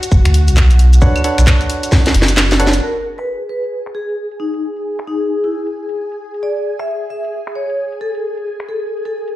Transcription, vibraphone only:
2.82 3.03 A#4 medium
3.18 3.38 B4 medium
3.49 3.77 B4 medium
3.95 4.22 G#4 medium
4.40 4.61 D#4 medium
5.07 5.28 D#4 medium
5.44 5.55 E4 medium
6.43 6.64 D5 medium
6.79 6.99 E5 medium
7.10 7.38 E5 medium
7.55 7.83 C#5 medium
8.01 8.22 A4 medium
8.69 8.89 A4 medium
9.05 9.17 A4 medium

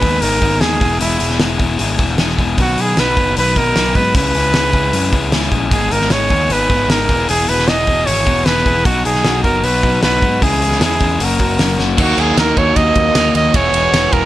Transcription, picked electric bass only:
0.03 0.21 D#2 medium
0.22 0.41 G#1 medium
0.42 0.61 G#1 medium
0.61 0.80 D#2 medium
0.81 1.00 E1 medium
1.00 1.19 E1 medium
1.21 1.39 E1 medium
1.40 1.78 E1 medium
1.79 1.98 G#1 medium
1.99 2.18 E1 medium
2.19 2.37 E1 medium
2.38 2.57 E1 medium
2.58 2.77 B1 medium
2.78 2.96 B1 medium
2.97 3.16 B1 medium
3.17 3.36 F#1 medium
3.37 3.55 B1 medium
3.57 3.75 B1 medium
3.76 3.94 B1 medium
3.95 4.14 G#2 medium
4.15 4.33 C#2 medium
4.34 4.53 C#2 medium
4.93 5.12 F#2 medium
5.13 5.31 C#2 medium
5.33 5.51 C#2 medium
5.52 5.71 A#1 medium
5.71 5.90 G#1 medium
5.91 6.10 G#1 medium
6.11 6.29 G#1 medium
6.31 6.49 D#2 medium
6.49 6.68 G#1 medium
6.70 6.88 G#1 medium
6.88 7.07 G#1 medium
7.09 7.28 E1 medium
7.29 7.47 E1 medium
7.49 7.67 E1 medium
8.07 8.26 G#1 medium
8.27 8.45 E1 medium
8.46 8.65 E1 medium
8.66 8.84 E1 medium
8.85 9.04 B1 medium
9.05 9.24 B1 medium
9.24 9.43 B1 medium
9.44 9.63 F#1 medium
9.64 9.82 B1 medium
9.84 10.02 B1 medium
10.03 10.21 B1 medium
10.22 10.41 G#2 medium
10.42 10.60 C#2 medium
10.61 10.79 C#2 medium
10.80 11.18 E2 medium
11.20 11.38 F#1 medium
11.40 11.58 F#1 medium
11.60 11.78 F#1 medium
11.78 11.97 F#1 medium
11.98 12.12 D#2 medium
12.18 12.31 D#2 medium
12.37 12.51 D#2 medium
12.57 12.71 D#2 medium
12.77 12.90 D#2 medium
12.96 13.09 D#2 medium
13.16 13.29 D#2 medium
13.35 13.48 D#2 medium
13.54 13.68 E1 medium
13.73 13.87 E1 medium
13.93 14.06 E1 medium
14.13 14.25 E1 medium

